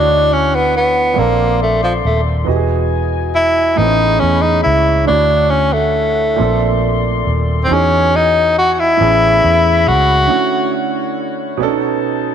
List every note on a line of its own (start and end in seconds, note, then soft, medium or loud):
0.00 1.13 D2 loud
0.00 1.15 D3 medium
0.00 1.16 A3 medium
0.00 0.35 D4 medium
0.00 1.15 E4 medium
0.00 1.18 E4 medium
0.00 1.21 F#4 medium
0.00 1.14 C#5 medium
0.00 1.17 C#5 medium
0.00 1.15 F#5 medium
0.33 0.57 C#4 medium
0.55 0.75 B3 medium
0.77 1.20 B3 medium
1.14 2.46 A#2 medium
1.14 2.46 F3 medium
1.14 2.47 C4 medium
1.14 2.47 D4 medium
1.14 2.45 A4 medium
1.14 2.45 D5 medium
1.14 2.45 C6 medium
1.18 2.00 A#1 medium
1.18 1.61 A#3 medium
1.18 2.48 A4 medium
1.63 1.82 A3 medium
1.84 1.93 F3 medium
2.05 2.44 D#1 medium
2.05 2.22 A3 medium
2.44 3.74 E1 loud
2.44 3.76 E3 medium
2.44 3.76 B3 medium
2.44 3.78 F#4 medium
2.44 3.77 F#4 medium
2.44 3.77 D#5 medium
2.44 3.76 D#5 medium
2.44 3.76 G#5 medium
2.49 2.55 G4 medium
2.56 3.80 G#4 medium
3.35 3.80 E4 loud
3.76 4.17 A1 loud
3.76 5.07 A2 medium
3.76 5.05 A3 medium
3.76 5.08 B3 medium
3.76 3.85 C4 soft
3.76 4.21 D#4 loud
3.76 5.07 G#4 medium
3.76 6.36 C#5 medium
3.76 5.07 B5 medium
3.81 5.10 G#4 medium
3.86 5.12 C#4 medium
4.20 4.61 E2 medium
4.20 4.43 C#4 medium
4.42 4.63 D#4 medium
4.63 5.05 C#2 medium
4.63 5.04 E4 medium
5.05 6.37 D3 medium
5.05 6.35 A3 medium
5.05 5.52 D4 medium
5.05 6.37 E4 medium
5.05 6.38 C#5 medium
5.05 6.37 F#5 medium
5.09 6.35 D2 loud
5.09 6.39 E4 medium
5.09 6.39 F#4 medium
5.50 5.75 C#4 medium
5.73 7.04 A3 medium
6.36 7.22 A#1 loud
6.36 7.68 A#2 medium
6.36 7.68 A3 medium
6.36 7.69 C4 medium
6.36 7.67 A4 medium
6.36 7.67 D5 medium
6.36 7.67 C6 medium
6.40 7.70 D4 medium
6.40 7.70 A4 medium
7.27 7.66 D#1 medium
7.64 8.98 E3 medium
7.64 7.75 C4 medium
7.68 8.96 E2 loud
7.68 8.98 B3 medium
7.68 9.00 D#4 medium
7.68 8.98 F#4 medium
7.68 9.00 F#4 medium
7.68 8.98 D#5 medium
7.68 8.98 G#5 medium
7.72 8.17 C#4 medium
7.72 9.00 G#4 medium
8.16 8.57 D#4 loud
8.59 8.73 F#4 loud
8.73 8.81 F#4 medium
8.79 9.89 E4 loud
8.97 9.39 A1 loud
8.97 10.29 A2 medium
8.97 10.27 A3 medium
8.97 10.30 B3 medium
8.97 10.29 G#4 medium
8.97 12.35 C#5 medium
8.97 10.29 B5 medium
9.01 10.28 C#4 medium
9.01 10.31 G#4 medium
9.44 9.89 E2 loud
9.88 10.26 C#2 medium
9.88 10.74 F#4 loud
10.27 11.59 D3 medium
10.27 11.59 A3 medium
10.27 11.59 C#4 medium
10.27 11.58 E4 medium
10.27 11.61 E4 medium
10.27 11.58 F#5 medium
10.32 11.61 F#4 medium
11.57 12.35 B2 medium
11.57 12.35 B3 medium
11.57 12.35 C#4 medium
11.57 12.35 D#4 medium
11.57 12.35 A5 medium
11.62 11.67 D4 medium
11.62 12.35 A4 medium
11.68 12.35 D#4 medium